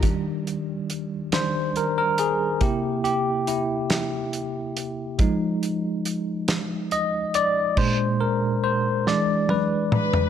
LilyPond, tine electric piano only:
<<
  \new Staff \with { instrumentName = "Tine electric piano" } { \time 6/8 \key ees \major \tempo 4. = 47 r4. c''8 bes'16 bes'16 aes'8 | g'8 g'8 e'4. r8 | r2 ees''8 d''8 | c''8 bes'8 c''8 d''8 b'4 | }
  \new Staff \with { instrumentName = "Tine electric piano" } { \clef bass \time 6/8 \key ees \major <ees g d'>4. <ees g d'>8 r4 | <c bes e'>2. | <f aes ees'>2. | <bes, aes d'>4. <e gis d'>8 r4 | }
>>